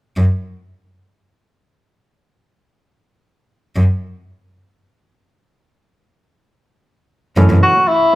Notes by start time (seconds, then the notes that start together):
0.17 F#2
3.76 F#2
7.37 F#2 B2 E3 A3 C#4
7.50 F#2
7.62 F#4
7.87 E4